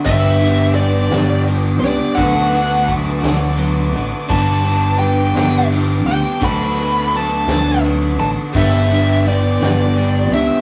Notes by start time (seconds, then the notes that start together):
0.02 G1 G2 D3 G3 D4 B4 D5 E5 G5 D6, kick, crash
0.07 B3 G4 B4
0.40 G3 B3 D4 G4, ride
0.75 G3 B3 D4 D5, ride
0.79 G4
1.10 G1 G2 D3 G3 B3 D4 G4, snare, ride
1.46 G3 B3 D4 G4, ride
1.80 C#2 D4 G4 D5, ride
1.84 G3 B3
2.15 D2 D3 F#3 A3 D4 F#4 F#5 A5, kick, ride
2.19 B3 A4
2.53 A3 B3 F#4, ride
2.88 F#3 A3 B3 F#4, kick, ride
3.21 D2 D3 F#3 A3 B3 F#4, snare, ride
3.56 F#3 A3 B3 F#4, ride
3.93 A1 A3 B3 F#4, ride
4.27 G1 G2 D3 G3 B3 D4 G4 B4 D5 G5 A5, kick, crash
4.32 B4
4.62 G3 B3 D4 G4, ride
4.98 G3 B3 D4 G4 G5, ride
5.35 G1 G2 D3 G3 B3 D4 G4, snare, ride
5.72 G3 B3 D4 G4, ride
6.07 D2 G3 B3 D4 G4 G5, ride
6.41 D2 D3 F#3 A3 B3 D4 F#4 A4 B4 F#5 A5 B5, kick, ride
6.77 A3 B3 A4, ride
7.13 F#3 A3 B3 A4 A5, ride
7.47 D2 A3 B3 A4, snare, ride
7.52 D3 F#3
7.84 F#3 A3 B3 A4, ride
8.19 A1 B3 A4 A5, ride
8.24 A3
8.53 G1 G2 D3 G3 B3 D4 G4 B4 D5 G5, kick, crash
8.57 E5
8.91 G3 B3 D4 G4, ride
9.25 G3 B3 D4 G4 D5, ride
9.61 G1 G2 D3 G3 B3 D4 G4, snare, ride
9.65 D5
9.95 G3 B3 D4 G4, ride
10.31 C#2 G3 B3 D4 G4 E5, ride